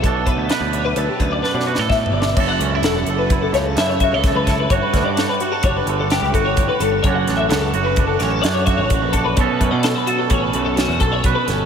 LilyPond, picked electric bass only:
\new Staff \with { instrumentName = "Picked electric bass" } { \clef bass \time 5/4 \key b \minor \tempo 4 = 128 b,,8. d,16 r16 d,8. d,16 r16 d,8 r16 b,8 a,8. g,,8 | fis,,8 cis,8 e,,8 fis,,4 cis,8 fis,8. cis,8 cis,8. | g,,16 r16 d,16 g,8 r8. fis,,8 g,,8. cis,16 g,,8 g,,16 r16 g,,8 | fis,,8 a,,8 cis,8 fis,,4 a,,8 fis,8. a,,8 ais,,8. |
b,,16 r16 fis,16 b,8 r8. a,,8 b,,8. e,16 b,,8 b,,16 r16 g,,8 | }